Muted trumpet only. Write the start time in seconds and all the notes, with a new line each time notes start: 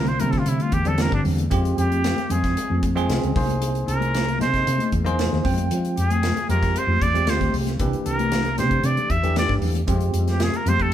0.08 C5
0.20 A#4
0.31 A4
0.39 F4
0.48 E4
0.62 F4
0.73 G4
0.87 A4
1.02 A#4
1.14 D4
1.78 G4
2.31 G#4
3.88 A#4
4.41 C5
5.99 G#4
6.50 A#4
6.78 C5
7.02 D5
7.29 C5
8.06 A#4
8.58 C5
8.85 D5
9.10 E5
9.38 D5
10.30 G4
10.43 G#4
10.56 A#4
10.69 C5
10.82 A4